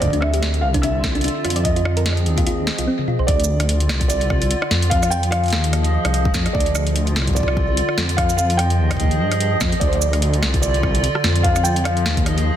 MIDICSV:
0, 0, Header, 1, 6, 480
1, 0, Start_track
1, 0, Tempo, 408163
1, 20, Time_signature, 4, 2, 24, 8
1, 14775, End_track
2, 0, Start_track
2, 0, Title_t, "Felt piano"
2, 0, Program_c, 0, 0
2, 2, Note_on_c, 0, 74, 105
2, 242, Note_on_c, 0, 76, 105
2, 258, Note_off_c, 0, 74, 0
2, 697, Note_off_c, 0, 76, 0
2, 721, Note_on_c, 0, 77, 107
2, 780, Note_off_c, 0, 77, 0
2, 962, Note_on_c, 0, 76, 106
2, 1923, Note_on_c, 0, 75, 99
2, 1960, Note_off_c, 0, 76, 0
2, 3324, Note_off_c, 0, 75, 0
2, 3843, Note_on_c, 0, 74, 106
2, 4784, Note_off_c, 0, 74, 0
2, 4801, Note_on_c, 0, 74, 101
2, 5761, Note_on_c, 0, 77, 114
2, 5800, Note_off_c, 0, 74, 0
2, 5993, Note_off_c, 0, 77, 0
2, 6002, Note_on_c, 0, 79, 106
2, 6234, Note_off_c, 0, 79, 0
2, 6242, Note_on_c, 0, 77, 112
2, 7404, Note_off_c, 0, 77, 0
2, 7682, Note_on_c, 0, 74, 106
2, 8625, Note_off_c, 0, 74, 0
2, 8642, Note_on_c, 0, 74, 96
2, 9603, Note_on_c, 0, 77, 109
2, 9640, Note_off_c, 0, 74, 0
2, 9825, Note_off_c, 0, 77, 0
2, 9842, Note_on_c, 0, 77, 99
2, 10082, Note_on_c, 0, 79, 110
2, 10099, Note_off_c, 0, 77, 0
2, 11244, Note_off_c, 0, 79, 0
2, 11523, Note_on_c, 0, 74, 102
2, 11615, Note_on_c, 0, 72, 86
2, 11617, Note_off_c, 0, 74, 0
2, 11696, Note_on_c, 0, 74, 99
2, 11705, Note_off_c, 0, 72, 0
2, 12444, Note_off_c, 0, 74, 0
2, 12484, Note_on_c, 0, 74, 96
2, 13405, Note_off_c, 0, 74, 0
2, 13444, Note_on_c, 0, 77, 108
2, 13683, Note_on_c, 0, 79, 100
2, 13699, Note_off_c, 0, 77, 0
2, 13922, Note_on_c, 0, 77, 107
2, 13939, Note_off_c, 0, 79, 0
2, 14775, Note_off_c, 0, 77, 0
2, 14775, End_track
3, 0, Start_track
3, 0, Title_t, "Ambient pad"
3, 0, Program_c, 1, 92
3, 0, Note_on_c, 1, 60, 75
3, 19, Note_on_c, 1, 50, 73
3, 652, Note_on_c, 1, 65, 87
3, 735, Note_on_c, 1, 74, 72
3, 1940, Note_off_c, 1, 50, 0
3, 1940, Note_off_c, 1, 60, 0
3, 1941, Note_off_c, 1, 74, 0
3, 1942, Note_on_c, 1, 53, 72
3, 2091, Note_on_c, 1, 68, 76
3, 2167, Note_on_c, 1, 60, 73
3, 2576, Note_off_c, 1, 65, 0
3, 2816, Note_on_c, 1, 75, 68
3, 3380, Note_off_c, 1, 60, 0
3, 3380, Note_off_c, 1, 68, 0
3, 3380, Note_off_c, 1, 75, 0
3, 3381, Note_off_c, 1, 53, 0
3, 3860, Note_on_c, 1, 50, 71
3, 3968, Note_on_c, 1, 65, 74
3, 4219, Note_on_c, 1, 74, 84
3, 5780, Note_off_c, 1, 50, 0
3, 5780, Note_off_c, 1, 74, 0
3, 5781, Note_on_c, 1, 53, 68
3, 6323, Note_on_c, 1, 75, 85
3, 6329, Note_on_c, 1, 68, 88
3, 6554, Note_off_c, 1, 65, 0
3, 7700, Note_off_c, 1, 53, 0
3, 7700, Note_off_c, 1, 68, 0
3, 7700, Note_off_c, 1, 75, 0
3, 7701, Note_on_c, 1, 50, 76
3, 7851, Note_on_c, 1, 65, 83
3, 8576, Note_on_c, 1, 74, 80
3, 9620, Note_off_c, 1, 74, 0
3, 9621, Note_off_c, 1, 50, 0
3, 9621, Note_on_c, 1, 53, 74
3, 9928, Note_on_c, 1, 75, 85
3, 10191, Note_on_c, 1, 68, 87
3, 10394, Note_off_c, 1, 65, 0
3, 11539, Note_on_c, 1, 50, 69
3, 11540, Note_off_c, 1, 53, 0
3, 11540, Note_off_c, 1, 68, 0
3, 11540, Note_off_c, 1, 75, 0
3, 11776, Note_on_c, 1, 65, 73
3, 11967, Note_on_c, 1, 74, 79
3, 13460, Note_off_c, 1, 50, 0
3, 13460, Note_off_c, 1, 74, 0
3, 13460, Note_on_c, 1, 53, 76
3, 13988, Note_on_c, 1, 75, 69
3, 14141, Note_on_c, 1, 68, 89
3, 14234, Note_off_c, 1, 65, 0
3, 14775, Note_off_c, 1, 53, 0
3, 14775, Note_off_c, 1, 68, 0
3, 14775, Note_off_c, 1, 75, 0
3, 14775, End_track
4, 0, Start_track
4, 0, Title_t, "Synth arpeggio sound"
4, 0, Program_c, 2, 84
4, 155, Note_on_c, 2, 62, 80
4, 216, Note_off_c, 2, 62, 0
4, 260, Note_on_c, 2, 62, 77
4, 307, Note_off_c, 2, 62, 0
4, 394, Note_on_c, 2, 67, 104
4, 431, Note_off_c, 2, 67, 0
4, 875, Note_on_c, 2, 62, 102
4, 936, Note_off_c, 2, 62, 0
4, 980, Note_on_c, 2, 62, 98
4, 1098, Note_off_c, 2, 62, 0
4, 1354, Note_on_c, 2, 62, 80
4, 1391, Note_off_c, 2, 62, 0
4, 1461, Note_on_c, 2, 62, 84
4, 1539, Note_off_c, 2, 62, 0
4, 1701, Note_on_c, 2, 65, 73
4, 1748, Note_off_c, 2, 65, 0
4, 1835, Note_on_c, 2, 74, 75
4, 1928, Note_off_c, 2, 74, 0
4, 2075, Note_on_c, 2, 65, 82
4, 2137, Note_off_c, 2, 65, 0
4, 2180, Note_on_c, 2, 65, 77
4, 2227, Note_off_c, 2, 65, 0
4, 2314, Note_on_c, 2, 70, 102
4, 2351, Note_off_c, 2, 70, 0
4, 2794, Note_on_c, 2, 65, 105
4, 2856, Note_off_c, 2, 65, 0
4, 2900, Note_on_c, 2, 65, 93
4, 3018, Note_off_c, 2, 65, 0
4, 3275, Note_on_c, 2, 65, 81
4, 3312, Note_off_c, 2, 65, 0
4, 3380, Note_on_c, 2, 60, 85
4, 3459, Note_off_c, 2, 60, 0
4, 3619, Note_on_c, 2, 65, 75
4, 3698, Note_off_c, 2, 65, 0
4, 3755, Note_on_c, 2, 72, 76
4, 3792, Note_off_c, 2, 72, 0
4, 14775, End_track
5, 0, Start_track
5, 0, Title_t, "Detuned saw bass"
5, 0, Program_c, 3, 39
5, 20, Note_on_c, 3, 38, 101
5, 741, Note_on_c, 3, 36, 100
5, 758, Note_off_c, 3, 38, 0
5, 1510, Note_off_c, 3, 36, 0
5, 1701, Note_on_c, 3, 41, 77
5, 2661, Note_on_c, 3, 39, 102
5, 2678, Note_off_c, 3, 41, 0
5, 3190, Note_off_c, 3, 39, 0
5, 3274, Note_on_c, 3, 36, 80
5, 3380, Note_off_c, 3, 36, 0
5, 3860, Note_on_c, 3, 38, 101
5, 4580, Note_on_c, 3, 36, 103
5, 4597, Note_off_c, 3, 38, 0
5, 5350, Note_off_c, 3, 36, 0
5, 5539, Note_on_c, 3, 41, 80
5, 6500, Note_on_c, 3, 39, 100
5, 6517, Note_off_c, 3, 41, 0
5, 7030, Note_off_c, 3, 39, 0
5, 7114, Note_on_c, 3, 36, 83
5, 7394, Note_off_c, 3, 36, 0
5, 7460, Note_on_c, 3, 41, 101
5, 7617, Note_off_c, 3, 41, 0
5, 7700, Note_on_c, 3, 38, 98
5, 8419, Note_on_c, 3, 36, 100
5, 8437, Note_off_c, 3, 38, 0
5, 9190, Note_off_c, 3, 36, 0
5, 9380, Note_on_c, 3, 41, 78
5, 10341, Note_on_c, 3, 39, 105
5, 10359, Note_off_c, 3, 41, 0
5, 10820, Note_on_c, 3, 43, 81
5, 10838, Note_off_c, 3, 39, 0
5, 11234, Note_off_c, 3, 43, 0
5, 11300, Note_on_c, 3, 41, 92
5, 11457, Note_off_c, 3, 41, 0
5, 11540, Note_on_c, 3, 38, 102
5, 12260, Note_on_c, 3, 36, 102
5, 12278, Note_off_c, 3, 38, 0
5, 13030, Note_off_c, 3, 36, 0
5, 13220, Note_on_c, 3, 41, 78
5, 14180, Note_on_c, 3, 39, 102
5, 14197, Note_off_c, 3, 41, 0
5, 14710, Note_off_c, 3, 39, 0
5, 14775, End_track
6, 0, Start_track
6, 0, Title_t, "Drums"
6, 20, Note_on_c, 9, 36, 88
6, 20, Note_on_c, 9, 42, 64
6, 53, Note_off_c, 9, 36, 0
6, 53, Note_on_c, 9, 36, 76
6, 87, Note_off_c, 9, 36, 0
6, 87, Note_on_c, 9, 36, 60
6, 121, Note_off_c, 9, 36, 0
6, 121, Note_on_c, 9, 36, 51
6, 138, Note_off_c, 9, 42, 0
6, 155, Note_on_c, 9, 42, 36
6, 238, Note_off_c, 9, 36, 0
6, 260, Note_on_c, 9, 37, 84
6, 272, Note_off_c, 9, 42, 0
6, 378, Note_off_c, 9, 37, 0
6, 394, Note_on_c, 9, 42, 50
6, 500, Note_off_c, 9, 42, 0
6, 500, Note_on_c, 9, 37, 53
6, 500, Note_on_c, 9, 38, 113
6, 500, Note_on_c, 9, 42, 63
6, 618, Note_off_c, 9, 37, 0
6, 618, Note_off_c, 9, 38, 0
6, 618, Note_off_c, 9, 42, 0
6, 634, Note_on_c, 9, 42, 35
6, 752, Note_off_c, 9, 42, 0
6, 874, Note_on_c, 9, 42, 53
6, 875, Note_on_c, 9, 36, 101
6, 979, Note_off_c, 9, 42, 0
6, 979, Note_on_c, 9, 42, 63
6, 992, Note_off_c, 9, 36, 0
6, 1097, Note_off_c, 9, 42, 0
6, 1220, Note_on_c, 9, 36, 100
6, 1220, Note_on_c, 9, 38, 114
6, 1338, Note_off_c, 9, 36, 0
6, 1338, Note_off_c, 9, 38, 0
6, 1355, Note_on_c, 9, 42, 27
6, 1425, Note_off_c, 9, 42, 0
6, 1425, Note_on_c, 9, 42, 39
6, 1460, Note_off_c, 9, 42, 0
6, 1460, Note_on_c, 9, 42, 53
6, 1505, Note_off_c, 9, 42, 0
6, 1505, Note_on_c, 9, 42, 52
6, 1622, Note_off_c, 9, 42, 0
6, 1700, Note_on_c, 9, 37, 36
6, 1700, Note_on_c, 9, 42, 48
6, 1767, Note_off_c, 9, 42, 0
6, 1767, Note_on_c, 9, 42, 61
6, 1817, Note_off_c, 9, 37, 0
6, 1834, Note_off_c, 9, 42, 0
6, 1834, Note_on_c, 9, 42, 52
6, 1939, Note_off_c, 9, 42, 0
6, 1939, Note_on_c, 9, 42, 69
6, 1940, Note_on_c, 9, 36, 97
6, 2057, Note_off_c, 9, 42, 0
6, 2058, Note_off_c, 9, 36, 0
6, 2074, Note_on_c, 9, 42, 38
6, 2180, Note_on_c, 9, 37, 87
6, 2192, Note_off_c, 9, 42, 0
6, 2297, Note_off_c, 9, 37, 0
6, 2314, Note_on_c, 9, 42, 52
6, 2419, Note_off_c, 9, 42, 0
6, 2419, Note_on_c, 9, 37, 25
6, 2419, Note_on_c, 9, 38, 111
6, 2419, Note_on_c, 9, 42, 66
6, 2464, Note_off_c, 9, 37, 0
6, 2464, Note_on_c, 9, 37, 34
6, 2499, Note_off_c, 9, 37, 0
6, 2499, Note_on_c, 9, 37, 45
6, 2537, Note_off_c, 9, 38, 0
6, 2537, Note_off_c, 9, 42, 0
6, 2554, Note_on_c, 9, 42, 36
6, 2617, Note_off_c, 9, 37, 0
6, 2660, Note_off_c, 9, 42, 0
6, 2660, Note_on_c, 9, 42, 38
6, 2777, Note_off_c, 9, 42, 0
6, 2794, Note_on_c, 9, 42, 53
6, 2795, Note_on_c, 9, 36, 108
6, 2899, Note_off_c, 9, 42, 0
6, 2899, Note_on_c, 9, 42, 64
6, 2912, Note_off_c, 9, 36, 0
6, 3017, Note_off_c, 9, 42, 0
6, 3140, Note_on_c, 9, 38, 115
6, 3257, Note_off_c, 9, 38, 0
6, 3274, Note_on_c, 9, 42, 65
6, 3392, Note_off_c, 9, 42, 0
6, 3514, Note_on_c, 9, 48, 53
6, 3619, Note_on_c, 9, 47, 76
6, 3631, Note_off_c, 9, 48, 0
6, 3737, Note_off_c, 9, 47, 0
6, 3753, Note_on_c, 9, 45, 81
6, 3859, Note_on_c, 9, 42, 73
6, 3860, Note_on_c, 9, 36, 101
6, 3871, Note_off_c, 9, 45, 0
6, 3976, Note_off_c, 9, 42, 0
6, 3977, Note_off_c, 9, 36, 0
6, 3993, Note_on_c, 9, 42, 39
6, 4046, Note_on_c, 9, 82, 71
6, 4111, Note_off_c, 9, 42, 0
6, 4163, Note_off_c, 9, 82, 0
6, 4233, Note_on_c, 9, 37, 54
6, 4233, Note_on_c, 9, 42, 55
6, 4339, Note_off_c, 9, 42, 0
6, 4339, Note_on_c, 9, 42, 68
6, 4351, Note_off_c, 9, 37, 0
6, 4457, Note_off_c, 9, 42, 0
6, 4474, Note_on_c, 9, 42, 38
6, 4579, Note_on_c, 9, 37, 85
6, 4579, Note_on_c, 9, 38, 123
6, 4591, Note_off_c, 9, 42, 0
6, 4696, Note_off_c, 9, 37, 0
6, 4696, Note_off_c, 9, 38, 0
6, 4713, Note_on_c, 9, 42, 57
6, 4714, Note_on_c, 9, 36, 108
6, 4819, Note_off_c, 9, 42, 0
6, 4819, Note_on_c, 9, 42, 66
6, 4819, Note_on_c, 9, 82, 73
6, 4831, Note_off_c, 9, 36, 0
6, 4937, Note_off_c, 9, 42, 0
6, 4937, Note_off_c, 9, 82, 0
6, 4953, Note_on_c, 9, 42, 40
6, 5059, Note_on_c, 9, 36, 107
6, 5059, Note_on_c, 9, 37, 57
6, 5071, Note_off_c, 9, 42, 0
6, 5177, Note_off_c, 9, 36, 0
6, 5177, Note_off_c, 9, 37, 0
6, 5193, Note_on_c, 9, 42, 54
6, 5299, Note_off_c, 9, 42, 0
6, 5299, Note_on_c, 9, 42, 73
6, 5417, Note_off_c, 9, 42, 0
6, 5434, Note_on_c, 9, 37, 85
6, 5539, Note_on_c, 9, 38, 116
6, 5551, Note_off_c, 9, 37, 0
6, 5656, Note_off_c, 9, 38, 0
6, 5673, Note_on_c, 9, 42, 57
6, 5778, Note_off_c, 9, 42, 0
6, 5778, Note_on_c, 9, 42, 71
6, 5779, Note_on_c, 9, 36, 107
6, 5896, Note_off_c, 9, 42, 0
6, 5897, Note_off_c, 9, 36, 0
6, 5913, Note_on_c, 9, 37, 52
6, 5913, Note_on_c, 9, 42, 38
6, 5913, Note_on_c, 9, 82, 56
6, 6018, Note_off_c, 9, 82, 0
6, 6018, Note_on_c, 9, 82, 74
6, 6031, Note_off_c, 9, 37, 0
6, 6031, Note_off_c, 9, 42, 0
6, 6136, Note_off_c, 9, 82, 0
6, 6152, Note_on_c, 9, 42, 54
6, 6258, Note_off_c, 9, 42, 0
6, 6258, Note_on_c, 9, 37, 81
6, 6258, Note_on_c, 9, 42, 69
6, 6375, Note_off_c, 9, 37, 0
6, 6375, Note_off_c, 9, 42, 0
6, 6392, Note_on_c, 9, 42, 18
6, 6419, Note_off_c, 9, 42, 0
6, 6419, Note_on_c, 9, 42, 21
6, 6446, Note_off_c, 9, 42, 0
6, 6446, Note_on_c, 9, 42, 26
6, 6472, Note_off_c, 9, 42, 0
6, 6472, Note_on_c, 9, 42, 33
6, 6498, Note_on_c, 9, 38, 126
6, 6590, Note_off_c, 9, 42, 0
6, 6616, Note_off_c, 9, 38, 0
6, 6632, Note_on_c, 9, 42, 57
6, 6738, Note_off_c, 9, 42, 0
6, 6738, Note_on_c, 9, 37, 53
6, 6738, Note_on_c, 9, 42, 70
6, 6856, Note_off_c, 9, 37, 0
6, 6856, Note_off_c, 9, 42, 0
6, 6873, Note_on_c, 9, 42, 40
6, 6991, Note_off_c, 9, 42, 0
6, 7113, Note_on_c, 9, 37, 82
6, 7113, Note_on_c, 9, 42, 54
6, 7219, Note_off_c, 9, 42, 0
6, 7219, Note_on_c, 9, 42, 70
6, 7231, Note_off_c, 9, 37, 0
6, 7337, Note_off_c, 9, 42, 0
6, 7354, Note_on_c, 9, 36, 119
6, 7459, Note_on_c, 9, 38, 120
6, 7459, Note_on_c, 9, 82, 75
6, 7460, Note_off_c, 9, 36, 0
6, 7460, Note_on_c, 9, 36, 115
6, 7577, Note_off_c, 9, 36, 0
6, 7577, Note_off_c, 9, 38, 0
6, 7577, Note_off_c, 9, 82, 0
6, 7594, Note_on_c, 9, 37, 54
6, 7594, Note_on_c, 9, 42, 56
6, 7700, Note_on_c, 9, 36, 110
6, 7712, Note_off_c, 9, 37, 0
6, 7712, Note_off_c, 9, 42, 0
6, 7767, Note_on_c, 9, 42, 68
6, 7817, Note_off_c, 9, 36, 0
6, 7834, Note_off_c, 9, 42, 0
6, 7834, Note_on_c, 9, 42, 37
6, 7940, Note_on_c, 9, 37, 79
6, 7940, Note_on_c, 9, 82, 78
6, 7952, Note_off_c, 9, 42, 0
6, 8057, Note_off_c, 9, 37, 0
6, 8057, Note_off_c, 9, 82, 0
6, 8074, Note_on_c, 9, 42, 53
6, 8181, Note_off_c, 9, 42, 0
6, 8181, Note_on_c, 9, 42, 68
6, 8298, Note_off_c, 9, 42, 0
6, 8315, Note_on_c, 9, 42, 37
6, 8420, Note_on_c, 9, 38, 127
6, 8432, Note_off_c, 9, 42, 0
6, 8488, Note_on_c, 9, 37, 52
6, 8538, Note_off_c, 9, 38, 0
6, 8554, Note_on_c, 9, 36, 53
6, 8555, Note_on_c, 9, 42, 55
6, 8580, Note_off_c, 9, 36, 0
6, 8580, Note_on_c, 9, 36, 60
6, 8605, Note_off_c, 9, 37, 0
6, 8625, Note_off_c, 9, 36, 0
6, 8625, Note_on_c, 9, 36, 73
6, 8660, Note_off_c, 9, 36, 0
6, 8660, Note_on_c, 9, 36, 80
6, 8661, Note_off_c, 9, 42, 0
6, 8661, Note_on_c, 9, 42, 64
6, 8661, Note_on_c, 9, 82, 76
6, 8705, Note_off_c, 9, 36, 0
6, 8705, Note_on_c, 9, 36, 90
6, 8740, Note_off_c, 9, 36, 0
6, 8740, Note_on_c, 9, 36, 99
6, 8778, Note_off_c, 9, 42, 0
6, 8778, Note_off_c, 9, 82, 0
6, 8794, Note_on_c, 9, 37, 80
6, 8858, Note_off_c, 9, 36, 0
6, 8900, Note_on_c, 9, 36, 111
6, 8912, Note_off_c, 9, 37, 0
6, 9018, Note_off_c, 9, 36, 0
6, 9141, Note_on_c, 9, 42, 69
6, 9258, Note_off_c, 9, 42, 0
6, 9274, Note_on_c, 9, 37, 54
6, 9380, Note_on_c, 9, 38, 122
6, 9392, Note_off_c, 9, 37, 0
6, 9498, Note_off_c, 9, 38, 0
6, 9515, Note_on_c, 9, 42, 57
6, 9620, Note_on_c, 9, 36, 108
6, 9621, Note_off_c, 9, 42, 0
6, 9621, Note_on_c, 9, 37, 75
6, 9621, Note_on_c, 9, 42, 66
6, 9738, Note_off_c, 9, 36, 0
6, 9738, Note_off_c, 9, 37, 0
6, 9738, Note_off_c, 9, 42, 0
6, 9755, Note_on_c, 9, 42, 35
6, 9755, Note_on_c, 9, 82, 60
6, 9860, Note_off_c, 9, 82, 0
6, 9860, Note_on_c, 9, 82, 82
6, 9873, Note_off_c, 9, 42, 0
6, 9978, Note_off_c, 9, 82, 0
6, 9995, Note_on_c, 9, 42, 50
6, 10100, Note_off_c, 9, 42, 0
6, 10100, Note_on_c, 9, 37, 50
6, 10100, Note_on_c, 9, 42, 65
6, 10218, Note_off_c, 9, 37, 0
6, 10218, Note_off_c, 9, 42, 0
6, 10235, Note_on_c, 9, 42, 36
6, 10352, Note_off_c, 9, 42, 0
6, 10475, Note_on_c, 9, 36, 50
6, 10475, Note_on_c, 9, 37, 78
6, 10475, Note_on_c, 9, 42, 53
6, 10545, Note_off_c, 9, 36, 0
6, 10545, Note_on_c, 9, 36, 72
6, 10580, Note_off_c, 9, 42, 0
6, 10580, Note_on_c, 9, 42, 63
6, 10592, Note_off_c, 9, 37, 0
6, 10625, Note_off_c, 9, 36, 0
6, 10625, Note_on_c, 9, 36, 87
6, 10698, Note_off_c, 9, 42, 0
6, 10715, Note_on_c, 9, 42, 37
6, 10743, Note_off_c, 9, 36, 0
6, 10832, Note_off_c, 9, 42, 0
6, 10955, Note_on_c, 9, 37, 49
6, 10955, Note_on_c, 9, 42, 50
6, 11060, Note_off_c, 9, 42, 0
6, 11060, Note_on_c, 9, 42, 64
6, 11072, Note_off_c, 9, 37, 0
6, 11178, Note_off_c, 9, 42, 0
6, 11300, Note_on_c, 9, 36, 114
6, 11300, Note_on_c, 9, 37, 73
6, 11300, Note_on_c, 9, 38, 125
6, 11300, Note_on_c, 9, 82, 82
6, 11417, Note_off_c, 9, 37, 0
6, 11417, Note_off_c, 9, 38, 0
6, 11417, Note_off_c, 9, 82, 0
6, 11418, Note_off_c, 9, 36, 0
6, 11435, Note_on_c, 9, 42, 53
6, 11540, Note_off_c, 9, 42, 0
6, 11540, Note_on_c, 9, 36, 102
6, 11540, Note_on_c, 9, 42, 64
6, 11657, Note_off_c, 9, 42, 0
6, 11658, Note_off_c, 9, 36, 0
6, 11675, Note_on_c, 9, 42, 34
6, 11780, Note_on_c, 9, 82, 86
6, 11792, Note_off_c, 9, 42, 0
6, 11898, Note_off_c, 9, 82, 0
6, 11915, Note_on_c, 9, 37, 49
6, 11915, Note_on_c, 9, 42, 49
6, 12020, Note_off_c, 9, 42, 0
6, 12020, Note_on_c, 9, 42, 65
6, 12032, Note_off_c, 9, 37, 0
6, 12138, Note_off_c, 9, 42, 0
6, 12154, Note_on_c, 9, 42, 33
6, 12260, Note_on_c, 9, 37, 77
6, 12260, Note_on_c, 9, 38, 124
6, 12272, Note_off_c, 9, 42, 0
6, 12378, Note_off_c, 9, 37, 0
6, 12378, Note_off_c, 9, 38, 0
6, 12394, Note_on_c, 9, 36, 108
6, 12395, Note_on_c, 9, 42, 53
6, 12500, Note_off_c, 9, 42, 0
6, 12500, Note_on_c, 9, 42, 60
6, 12500, Note_on_c, 9, 82, 81
6, 12512, Note_off_c, 9, 36, 0
6, 12617, Note_off_c, 9, 42, 0
6, 12617, Note_off_c, 9, 82, 0
6, 12634, Note_on_c, 9, 42, 35
6, 12739, Note_on_c, 9, 36, 105
6, 12740, Note_on_c, 9, 37, 51
6, 12752, Note_off_c, 9, 42, 0
6, 12857, Note_off_c, 9, 36, 0
6, 12858, Note_off_c, 9, 37, 0
6, 12874, Note_on_c, 9, 42, 48
6, 12980, Note_off_c, 9, 42, 0
6, 12980, Note_on_c, 9, 42, 63
6, 13097, Note_off_c, 9, 42, 0
6, 13114, Note_on_c, 9, 37, 79
6, 13219, Note_on_c, 9, 38, 117
6, 13232, Note_off_c, 9, 37, 0
6, 13337, Note_off_c, 9, 38, 0
6, 13354, Note_on_c, 9, 42, 50
6, 13459, Note_off_c, 9, 42, 0
6, 13459, Note_on_c, 9, 42, 65
6, 13460, Note_on_c, 9, 36, 103
6, 13577, Note_off_c, 9, 36, 0
6, 13577, Note_off_c, 9, 42, 0
6, 13594, Note_on_c, 9, 37, 52
6, 13594, Note_on_c, 9, 42, 34
6, 13594, Note_on_c, 9, 82, 64
6, 13700, Note_off_c, 9, 82, 0
6, 13700, Note_on_c, 9, 82, 84
6, 13711, Note_off_c, 9, 37, 0
6, 13711, Note_off_c, 9, 42, 0
6, 13817, Note_off_c, 9, 82, 0
6, 13834, Note_on_c, 9, 42, 50
6, 13939, Note_off_c, 9, 42, 0
6, 13939, Note_on_c, 9, 37, 77
6, 13939, Note_on_c, 9, 42, 61
6, 14057, Note_off_c, 9, 37, 0
6, 14057, Note_off_c, 9, 42, 0
6, 14074, Note_on_c, 9, 42, 35
6, 14180, Note_on_c, 9, 38, 122
6, 14192, Note_off_c, 9, 42, 0
6, 14297, Note_off_c, 9, 38, 0
6, 14314, Note_on_c, 9, 36, 106
6, 14314, Note_on_c, 9, 42, 53
6, 14420, Note_off_c, 9, 42, 0
6, 14420, Note_on_c, 9, 37, 53
6, 14420, Note_on_c, 9, 42, 62
6, 14431, Note_off_c, 9, 36, 0
6, 14538, Note_off_c, 9, 37, 0
6, 14538, Note_off_c, 9, 42, 0
6, 14554, Note_on_c, 9, 42, 36
6, 14672, Note_off_c, 9, 42, 0
6, 14775, End_track
0, 0, End_of_file